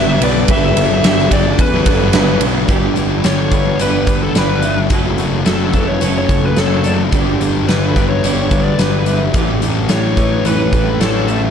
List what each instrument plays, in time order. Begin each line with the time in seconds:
Already playing: picked electric bass G1, distorted electric guitar G2 D3 G3 D4, overdriven electric guitar G2 D3 G3, clean electric guitar B4, lead electric guitar E5
0.07 overdriven electric guitar G3 B3 D4 G4
0.21 picked electric bass B1, distorted electric guitar G2 D3 G3, overdriven electric guitar G3 B3 D4 G4, clean electric guitar B4, lead electric guitar D5, ride
0.35 distorted electric guitar D3 G3
0.48 picked electric bass G1, overdriven electric guitar G2 D3 G3 B3 D4 G4, distorted electric guitar G2 D3 G3, clean electric guitar B4, lead electric guitar E5, kick, ride
0.76 picked electric bass G1, overdriven electric guitar G3 B3 D4 G4, clean electric guitar A4, ride
0.89 distorted electric guitar D3 G3, overdriven electric guitar G3 B3 D4 G4
1.03 picked electric bass G1, overdriven electric guitar G2 D3 G3 B3 D4 G4, distorted electric guitar G2 D3 G3, clean electric guitar G4, snare, ride
1.18 distorted electric guitar D3 G3, snare
1.31 picked electric bass G1, overdriven electric guitar G3 B3 D4 G4, clean electric guitar G4, lead electric guitar D5, kick, ride
1.45 overdriven electric guitar G3 B3 D4 G4, muted distorted electric guitar stroke
1.59 picked electric bass E2, lead electric guitar B4, kick, ride
1.72 distorted electric guitar D3 G3, overdriven electric guitar G3 B3 D4 G4
1.86 picked electric bass G1, distorted electric guitar G2 D3 G3, overdriven electric guitar G3 B3 D4 G4, clean electric guitar A4, kick, ride
1.99 overdriven electric guitar G3 B3 D4 G4, muted distorted electric guitar stroke
2.13 picked electric bass G1, overdriven electric guitar G2 D3 G3 B3 D4 G4, distorted electric guitar G2 D3 G3, clean electric guitar B4, snare, ride
2.27 overdriven electric guitar G3 B3 D4 G4
2.40 picked electric bass B1, distorted electric guitar G2 D3 G3, overdriven electric guitar G3 B3 D4 G4, clean electric guitar B4, ride
2.55 distorted electric guitar D3 G3
2.68 picked electric bass G1, overdriven electric guitar G2 D3 G3 B3 D4 G4, distorted electric guitar G2 D3 G3, clean electric guitar G4, kick, closed hi-hat
2.96 picked electric bass G1, distorted electric guitar D3 G3, overdriven electric guitar G3 B3 D4 G4, closed hi-hat
3.23 picked electric bass G1, distorted electric guitar G2 D3 G3, overdriven electric guitar G3 B3 D4 G4, clean electric guitar A4, lead electric guitar C#5, snare, closed hi-hat
3.51 distorted electric guitar D3 G3, overdriven electric guitar G3 B3 D4 G4, clean electric guitar B4, kick, closed hi-hat
3.79 picked electric bass G1, overdriven electric guitar G2 D3 G3 B3 D4 G4, lead electric guitar B4, clean electric guitar D5, closed hi-hat
4.07 picked electric bass G1, overdriven electric guitar G3 B3 D4 G4, clean electric guitar B4, kick, closed hi-hat
4.23 lead electric guitar A4
4.35 picked electric bass G1, distorted electric guitar G2 D3 G3, overdriven electric guitar G3 B3 D4 G4, lead electric guitar B4, clean electric guitar D5, snare, closed hi-hat
4.62 distorted electric guitar D3 G3, overdriven electric guitar G3 B3 D4 G4, clean electric guitar E5, closed hi-hat
4.90 picked electric bass F#1, distorted electric guitar F#2 C#3 F#3, overdriven electric guitar F#2 C#3 F#3 A3 C#4 A4, clean electric guitar F#4, kick, closed hi-hat
5.18 picked electric bass F#1, distorted electric guitar C#3 F#3, overdriven electric guitar F#3 A3 C#4 A4, closed hi-hat
5.46 picked electric bass F#1, distorted electric guitar F#2 C#3 F#3, overdriven electric guitar F#3 A3 C#4 A4, lead electric guitar A4, clean electric guitar A4, snare, closed hi-hat
5.73 distorted electric guitar C#3 F#3, overdriven electric guitar F#3 A3 C#4 A4, clean electric guitar B4, kick, closed hi-hat
5.88 lead electric guitar C#5
6.01 picked electric bass F#1, overdriven electric guitar F#2 C#3 F#3 A3 C#4 A4, clean electric guitar C#5, closed hi-hat
6.18 lead electric guitar C#5
6.29 picked electric bass F#1, overdriven electric guitar F#3 A3 C#4 A4, clean electric guitar A4, kick, closed hi-hat
6.45 lead electric guitar B4
6.56 picked electric bass F#1, distorted electric guitar F#2 C#3 F#3, overdriven electric guitar F#3 A3 C#4 A4, lead electric guitar A4, clean electric guitar C#5, snare, closed hi-hat
6.84 distorted electric guitar C#3 F#3, overdriven electric guitar F#3 A3 C#4 A4, clean electric guitar D5, closed hi-hat
7.12 picked electric bass G1, overdriven electric guitar G2 D3 G3 B3 D4 G4, distorted electric guitar G2 D3 G3, clean electric guitar G4, kick, closed hi-hat
7.40 picked electric bass G1, distorted electric guitar D3 G3, overdriven electric guitar G3 B3 D4 G4, closed hi-hat
7.68 picked electric bass G1, distorted electric guitar G2 D3 G3, overdriven electric guitar G3 B3 D4 G4, clean electric guitar A4, lead electric guitar B4, snare, closed hi-hat
7.95 distorted electric guitar D3 G3, overdriven electric guitar G3 B3 D4 G4, clean electric guitar B4, kick, closed hi-hat
8.10 lead electric guitar C#5
8.23 picked electric bass G1, overdriven electric guitar G2 D3 G3 B3 D4 G4, clean electric guitar D5, closed hi-hat
8.51 picked electric bass G1, overdriven electric guitar G3 B3 D4 G4, clean electric guitar B4, kick, closed hi-hat
8.64 lead electric guitar D5
8.78 picked electric bass G1, distorted electric guitar G2 D3 G3, overdriven electric guitar G3 B3 D4 G4, lead electric guitar B4, clean electric guitar D5, snare, closed hi-hat
9.06 distorted electric guitar D3 G3, overdriven electric guitar G3 B3 D4 G4, clean electric guitar E5, closed hi-hat
9.34 picked electric bass A1, distorted electric guitar A2 E3 A3, overdriven electric guitar A2 E3 G3 C#4, clean electric guitar G4, kick, closed hi-hat
9.38 overdriven electric guitar G4
9.62 picked electric bass A1, distorted electric guitar E3 A3, overdriven electric guitar G3 C#4 G4, closed hi-hat
9.89 picked electric bass A1, distorted electric guitar A2 E3 A3, overdriven electric guitar E3 G3 C#4, clean electric guitar A4, lead electric guitar C#5, snare, closed hi-hat
9.93 overdriven electric guitar G4
10.17 distorted electric guitar E3 A3, overdriven electric guitar G3 C#4 G4, clean electric guitar B4, kick, closed hi-hat
10.44 picked electric bass A1, overdriven electric guitar A2 E3 G3 C#4 G4, lead electric guitar B4, clean electric guitar C#5, closed hi-hat
10.72 picked electric bass A1, overdriven electric guitar G3 C#4 G4, clean electric guitar A4, kick, closed hi-hat
11.00 picked electric bass A1, distorted electric guitar A2 E3 A3, overdriven electric guitar E3 G3 C#4 G4, lead electric guitar A4, clean electric guitar C#5, snare, closed hi-hat
11.28 distorted electric guitar E3 A3, overdriven electric guitar G3 C#4 G4, clean electric guitar E5, closed hi-hat